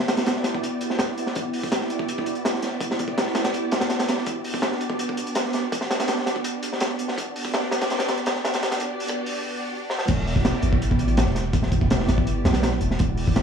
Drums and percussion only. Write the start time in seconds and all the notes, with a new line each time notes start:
0.08 snare, closed hi-hat
0.17 snare, closed hi-hat
0.26 snare, closed hi-hat
0.36 snare
0.44 snare, closed hi-hat
0.54 kick
0.63 closed hi-hat
0.81 closed hi-hat
0.90 snare
0.99 snare, closed hi-hat
1.18 closed hi-hat
1.26 snare
1.35 kick, closed hi-hat
1.53 open hi-hat
1.64 kick
1.72 snare, closed hi-hat
1.81 snare
1.90 closed hi-hat
1.99 kick
2.08 closed hi-hat
2.18 kick
2.26 closed hi-hat
2.35 closed hi-hat
2.45 snare, closed hi-hat
2.54 snare
2.62 snare, closed hi-hat
2.80 kick, closed hi-hat
2.91 snare
2.99 kick, closed hi-hat
3.08 kick
3.18 snare, closed hi-hat
3.27 snare
3.35 snare, closed hi-hat
3.44 snare, closed hi-hat
3.54 closed hi-hat
3.72 snare, closed hi-hat
3.80 snare, closed hi-hat
3.90 snare, closed hi-hat
3.99 snare, closed hi-hat
4.08 snare, closed hi-hat
4.18 snare
4.26 kick, closed hi-hat
4.44 open hi-hat
4.54 kick
4.62 snare, closed hi-hat
4.72 snare
4.81 closed hi-hat
4.90 kick
4.99 closed hi-hat
5.09 kick
5.17 closed hi-hat
5.27 closed hi-hat
5.35 snare, closed hi-hat
5.45 snare
5.53 snare, closed hi-hat
5.72 kick, closed hi-hat
5.81 snare
5.90 snare, closed hi-hat
6.00 snare, closed hi-hat
6.08 snare, closed hi-hat
6.18 snare
6.26 snare, closed hi-hat
6.36 kick
6.44 closed hi-hat
6.63 closed hi-hat
6.73 snare
6.80 snare, closed hi-hat
6.99 closed hi-hat
7.08 snare
7.18 kick, closed hi-hat
7.36 open hi-hat
7.45 kick
7.54 snare, closed hi-hat
7.63 snare
7.71 snare, closed hi-hat
7.81 snare, closed hi-hat
7.90 snare, closed hi-hat
7.99 snare, closed hi-hat
8.08 snare, closed hi-hat
8.17 closed hi-hat
8.26 snare, closed hi-hat
8.35 snare
8.45 snare, closed hi-hat
8.54 snare, closed hi-hat
8.63 snare, closed hi-hat
8.71 snare, closed hi-hat
8.80 kick, closed hi-hat
9.00 open hi-hat
9.08 kick, closed hi-hat
9.26 open hi-hat
9.90 snare
9.99 snare
10.08 kick, closed hi-hat, crash
10.27 open hi-hat
10.36 kick
10.45 snare, closed hi-hat
10.54 snare
10.63 closed hi-hat
10.73 kick
10.82 closed hi-hat
10.91 kick
10.99 closed hi-hat
11.08 closed hi-hat
11.17 snare, closed hi-hat
11.26 snare
11.35 snare, closed hi-hat
11.53 kick, closed hi-hat
11.63 snare
11.72 kick, closed hi-hat
11.81 kick
11.90 snare, closed hi-hat
12.00 snare
12.08 snare, closed hi-hat
12.18 kick
12.27 closed hi-hat
12.45 snare, closed hi-hat
12.53 snare, closed hi-hat
12.63 snare, closed hi-hat
12.81 closed hi-hat
12.91 snare
12.99 kick, closed hi-hat
13.17 open hi-hat
13.27 kick
13.36 snare, closed hi-hat